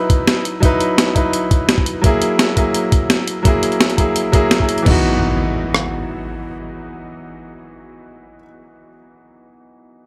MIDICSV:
0, 0, Header, 1, 4, 480
1, 0, Start_track
1, 0, Tempo, 352941
1, 854, Time_signature, 4, 2, 24, 8
1, 13688, End_track
2, 0, Start_track
2, 0, Title_t, "Grand piano"
2, 0, Program_c, 0, 0
2, 0, Control_c, 0, 64, 127
2, 0, Note_on_c, 0, 54, 73
2, 0, Note_on_c, 0, 63, 66
2, 0, Note_on_c, 0, 64, 65
2, 0, Note_on_c, 0, 71, 82
2, 820, Note_off_c, 0, 54, 0
2, 820, Note_on_c, 0, 54, 88
2, 843, Note_off_c, 0, 63, 0
2, 843, Note_on_c, 0, 63, 81
2, 866, Note_off_c, 0, 64, 0
2, 866, Note_on_c, 0, 64, 80
2, 888, Note_off_c, 0, 71, 0
2, 888, Note_on_c, 0, 71, 96
2, 1529, Note_off_c, 0, 54, 0
2, 1540, Note_off_c, 0, 63, 0
2, 1552, Note_off_c, 0, 64, 0
2, 1557, Note_on_c, 0, 54, 71
2, 1563, Note_off_c, 0, 71, 0
2, 1569, Note_on_c, 0, 63, 68
2, 1580, Note_on_c, 0, 64, 67
2, 1593, Note_on_c, 0, 71, 79
2, 1640, Note_off_c, 0, 54, 0
2, 1646, Note_off_c, 0, 63, 0
2, 1652, Note_off_c, 0, 64, 0
2, 1658, Note_off_c, 0, 71, 0
2, 2740, Note_on_c, 0, 54, 85
2, 2763, Note_on_c, 0, 58, 79
2, 2786, Note_on_c, 0, 64, 79
2, 2790, Control_c, 0, 64, 0
2, 2809, Note_on_c, 0, 68, 95
2, 3003, Control_c, 0, 64, 127
2, 3449, Note_off_c, 0, 54, 0
2, 3460, Note_off_c, 0, 58, 0
2, 3472, Note_off_c, 0, 64, 0
2, 3477, Note_on_c, 0, 54, 72
2, 3483, Note_off_c, 0, 68, 0
2, 3489, Note_on_c, 0, 58, 68
2, 3500, Note_on_c, 0, 64, 67
2, 3512, Note_on_c, 0, 68, 82
2, 3560, Note_off_c, 0, 54, 0
2, 3566, Note_off_c, 0, 58, 0
2, 3572, Note_off_c, 0, 64, 0
2, 3577, Note_off_c, 0, 68, 0
2, 4660, Note_on_c, 0, 54, 86
2, 4683, Note_on_c, 0, 58, 79
2, 4705, Note_on_c, 0, 64, 78
2, 4729, Note_on_c, 0, 68, 94
2, 5369, Note_off_c, 0, 54, 0
2, 5380, Note_off_c, 0, 58, 0
2, 5392, Note_off_c, 0, 64, 0
2, 5399, Note_on_c, 0, 54, 72
2, 5403, Note_off_c, 0, 68, 0
2, 5410, Note_on_c, 0, 58, 66
2, 5421, Note_on_c, 0, 64, 65
2, 5433, Note_on_c, 0, 68, 79
2, 5481, Note_off_c, 0, 54, 0
2, 5487, Note_off_c, 0, 58, 0
2, 5492, Note_off_c, 0, 64, 0
2, 5498, Note_off_c, 0, 68, 0
2, 5876, Note_on_c, 0, 54, 92
2, 5887, Note_on_c, 0, 58, 88
2, 5899, Note_on_c, 0, 64, 84
2, 5911, Note_on_c, 0, 68, 103
2, 6219, Note_off_c, 0, 54, 0
2, 6224, Note_off_c, 0, 58, 0
2, 6230, Note_off_c, 0, 64, 0
2, 6236, Note_off_c, 0, 68, 0
2, 6239, Note_on_c, 0, 54, 68
2, 6251, Note_on_c, 0, 58, 63
2, 6262, Note_on_c, 0, 64, 62
2, 6274, Note_on_c, 0, 68, 78
2, 6561, Note_on_c, 0, 52, 81
2, 6577, Note_off_c, 0, 54, 0
2, 6582, Note_off_c, 0, 58, 0
2, 6588, Note_off_c, 0, 64, 0
2, 6594, Note_off_c, 0, 68, 0
2, 6595, Note_on_c, 0, 59, 76
2, 6631, Note_on_c, 0, 63, 75
2, 6633, Control_c, 0, 64, 0
2, 6665, Note_on_c, 0, 66, 91
2, 6864, Control_c, 0, 64, 127
2, 11358, Note_off_c, 0, 52, 0
2, 11392, Note_off_c, 0, 59, 0
2, 11428, Note_off_c, 0, 63, 0
2, 11462, Note_off_c, 0, 66, 0
2, 13688, End_track
3, 0, Start_track
3, 0, Title_t, "Impact"
3, 0, Program_c, 1, 103
3, 6614, Note_on_c, 1, 60, 60
3, 11466, Note_off_c, 1, 60, 0
3, 13688, End_track
4, 0, Start_track
4, 0, Title_t, "Drums"
4, 134, Note_on_c, 9, 36, 100
4, 134, Note_on_c, 9, 42, 61
4, 270, Note_off_c, 9, 36, 0
4, 270, Note_off_c, 9, 42, 0
4, 374, Note_on_c, 9, 38, 113
4, 374, Note_on_c, 9, 42, 85
4, 510, Note_off_c, 9, 38, 0
4, 510, Note_off_c, 9, 42, 0
4, 615, Note_on_c, 9, 42, 60
4, 751, Note_off_c, 9, 42, 0
4, 854, Note_on_c, 9, 36, 110
4, 854, Note_on_c, 9, 42, 87
4, 990, Note_off_c, 9, 36, 0
4, 990, Note_off_c, 9, 42, 0
4, 1095, Note_on_c, 9, 42, 63
4, 1231, Note_off_c, 9, 42, 0
4, 1335, Note_on_c, 9, 38, 110
4, 1335, Note_on_c, 9, 42, 91
4, 1471, Note_off_c, 9, 38, 0
4, 1471, Note_off_c, 9, 42, 0
4, 1574, Note_on_c, 9, 36, 56
4, 1574, Note_on_c, 9, 42, 62
4, 1710, Note_off_c, 9, 36, 0
4, 1710, Note_off_c, 9, 42, 0
4, 1815, Note_on_c, 9, 42, 88
4, 1951, Note_off_c, 9, 42, 0
4, 2055, Note_on_c, 9, 36, 97
4, 2055, Note_on_c, 9, 42, 64
4, 2191, Note_off_c, 9, 36, 0
4, 2191, Note_off_c, 9, 42, 0
4, 2294, Note_on_c, 9, 38, 108
4, 2294, Note_on_c, 9, 42, 87
4, 2418, Note_on_c, 9, 36, 58
4, 2430, Note_off_c, 9, 38, 0
4, 2430, Note_off_c, 9, 42, 0
4, 2534, Note_on_c, 9, 42, 64
4, 2554, Note_off_c, 9, 36, 0
4, 2670, Note_off_c, 9, 42, 0
4, 2774, Note_on_c, 9, 42, 93
4, 2775, Note_on_c, 9, 36, 107
4, 2910, Note_off_c, 9, 42, 0
4, 2911, Note_off_c, 9, 36, 0
4, 3013, Note_on_c, 9, 42, 69
4, 3149, Note_off_c, 9, 42, 0
4, 3253, Note_on_c, 9, 38, 110
4, 3253, Note_on_c, 9, 42, 92
4, 3389, Note_off_c, 9, 38, 0
4, 3389, Note_off_c, 9, 42, 0
4, 3493, Note_on_c, 9, 42, 66
4, 3495, Note_on_c, 9, 36, 55
4, 3629, Note_off_c, 9, 42, 0
4, 3631, Note_off_c, 9, 36, 0
4, 3733, Note_on_c, 9, 42, 89
4, 3869, Note_off_c, 9, 42, 0
4, 3974, Note_on_c, 9, 36, 93
4, 3974, Note_on_c, 9, 42, 65
4, 4110, Note_off_c, 9, 36, 0
4, 4110, Note_off_c, 9, 42, 0
4, 4214, Note_on_c, 9, 38, 106
4, 4214, Note_on_c, 9, 42, 91
4, 4350, Note_off_c, 9, 38, 0
4, 4350, Note_off_c, 9, 42, 0
4, 4454, Note_on_c, 9, 42, 65
4, 4590, Note_off_c, 9, 42, 0
4, 4694, Note_on_c, 9, 36, 107
4, 4694, Note_on_c, 9, 42, 96
4, 4830, Note_off_c, 9, 36, 0
4, 4830, Note_off_c, 9, 42, 0
4, 4934, Note_on_c, 9, 42, 69
4, 5059, Note_off_c, 9, 42, 0
4, 5059, Note_on_c, 9, 42, 36
4, 5175, Note_off_c, 9, 42, 0
4, 5175, Note_on_c, 9, 38, 110
4, 5175, Note_on_c, 9, 42, 91
4, 5299, Note_off_c, 9, 42, 0
4, 5299, Note_on_c, 9, 42, 38
4, 5311, Note_off_c, 9, 38, 0
4, 5415, Note_off_c, 9, 42, 0
4, 5415, Note_on_c, 9, 36, 57
4, 5415, Note_on_c, 9, 42, 68
4, 5551, Note_off_c, 9, 36, 0
4, 5551, Note_off_c, 9, 42, 0
4, 5655, Note_on_c, 9, 42, 94
4, 5791, Note_off_c, 9, 42, 0
4, 5894, Note_on_c, 9, 36, 96
4, 5895, Note_on_c, 9, 42, 68
4, 6030, Note_off_c, 9, 36, 0
4, 6031, Note_off_c, 9, 42, 0
4, 6134, Note_on_c, 9, 38, 111
4, 6134, Note_on_c, 9, 42, 94
4, 6257, Note_on_c, 9, 36, 58
4, 6270, Note_off_c, 9, 38, 0
4, 6270, Note_off_c, 9, 42, 0
4, 6374, Note_on_c, 9, 42, 66
4, 6393, Note_off_c, 9, 36, 0
4, 6497, Note_off_c, 9, 42, 0
4, 6497, Note_on_c, 9, 42, 37
4, 6613, Note_on_c, 9, 36, 109
4, 6613, Note_on_c, 9, 49, 85
4, 6633, Note_off_c, 9, 42, 0
4, 6749, Note_off_c, 9, 36, 0
4, 6749, Note_off_c, 9, 49, 0
4, 7813, Note_on_c, 9, 37, 57
4, 7949, Note_off_c, 9, 37, 0
4, 13688, End_track
0, 0, End_of_file